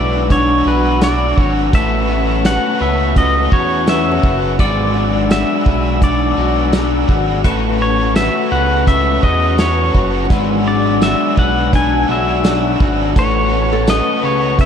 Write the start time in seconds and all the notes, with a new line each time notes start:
Already playing: B1 G#3 D4 E4 F#4 B4 D5 F#5 G#5 E6
0.00 F#3
0.29 G#2 E3 F#3 D4 F#4 B4 C#5, kick, closed hi-hat
0.64 B1 D4 F#4 B4
0.69 F#3
1.00 F#3 D4 F#4 D5, snare, closed hi-hat, tambourine
1.05 B4
1.36 G#1 D4 F#4 B4 C#5, kick
1.41 F#3
1.72 A1 A3 C#4 F#4 B4 E5 A5 C#6, kick, closed hi-hat
2.07 F#4 B4
2.13 C#4
2.43 A3 C#4 F#4 F#5, snare, closed hi-hat, tambourine
2.48 B4
2.79 C#2 F#4 B4 E5
2.84 C#4
3.15 A3 C#4 F#4 B4 D#5, kick, closed hi-hat
3.50 E2 F#4 B4 C#5, kick
3.56 C#4
3.86 A3 C#4 F#4 E5, snare, closed hi-hat, tambourine
3.91 B4
4.11 F#4
4.22 F#1 F#4 B4, kick
4.27 C#4
4.58 G#1 G#2 E3 F#3 G#3 D4 F#4 B4 D5 F#5 G#5 E6, kick, closed hi-hat
4.93 D4 F#4 B4
4.99 F#3
5.29 F#3 D4 F#4 E5, snare, closed hi-hat, tambourine
5.34 B4
5.65 B1 D4 F#4 B4, kick
5.70 F#3
6.01 G#2 E3 F#3 D4 F#4 B4 D5, kick, closed hi-hat
6.36 B1 D4 F#4 B4
6.42 F#3
6.72 F#3 D4 F#4, snare, closed hi-hat, tambourine
6.77 B4
7.07 G#1 D4 F#4 B4, kick
7.13 F#3
7.43 A1 A3 C#4 F#4 B4 F#5 A5 C#6, kick, closed hi-hat
7.78 F#4 B4 C#5
7.84 C#4
8.14 A3 C#4 F#4 E5, snare, closed hi-hat, tambourine
8.20 B4
8.50 C#2 F#4 B4 F#5
8.55 C#4
8.86 A3 C#4 F#4 B4 E5, kick, closed hi-hat
9.22 E2 F#4 B4 D#5, kick
9.27 C#4
9.57 A3 C#4 F#4 C#5, snare, closed hi-hat, tambourine
9.62 B4
9.93 F#1 F#4 B4, kick
9.98 C#4
10.25 G#2 F#4
10.30 G#1 E3 F#3 G#3 D4 F#4 B4 D5 G#5 E6, kick, closed hi-hat
10.64 D4 F#4 B4 D5
10.70 F#3
11.00 F#3 D4 F#4 E5, snare, closed hi-hat, tambourine
11.06 B4
11.36 B1 D4 F#4 B4 F#5, kick
11.41 F#3
11.72 G#2 E3 F#3 D4 F#4 B4 G#5, kick, closed hi-hat
12.08 B1 D4 F#4 B4 E5
12.13 F#3
12.43 F#3 D4 F#4, snare, closed hi-hat, tambourine
12.48 B4
12.79 G#1 D4 F#4 B4, kick
12.84 F#3
13.15 A1 A3 C#4 F#4 B4 C#5 A5 C#6, kick, closed hi-hat
13.50 F#4 B4
13.55 C#4
13.72 A4
13.86 A3 C#4 F#4 D#5, snare, closed hi-hat, tambourine
13.92 B4
14.22 C#2 F#4 B4 C#5
14.27 C#4
14.58 A3 C#4 F#4 B4 E5, kick, closed hi-hat